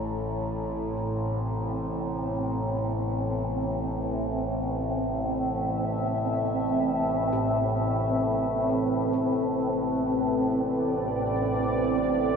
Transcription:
Already playing: A1 A2
0.06 C4
0.43 A4
1.38 B4
4.32 E5
7.33 A2 G4
9.13 A4
10.02 D5

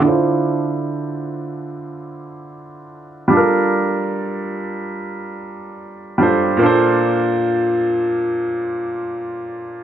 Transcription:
0.00 D3 D4 E4
0.06 F4 C5
3.28 G3 D4
3.32 F4 A4
3.37 A#4
6.18 G3 D4 F4 A4
6.22 C5
6.57 A#2 A#3
6.61 D4 A4
6.66 C5

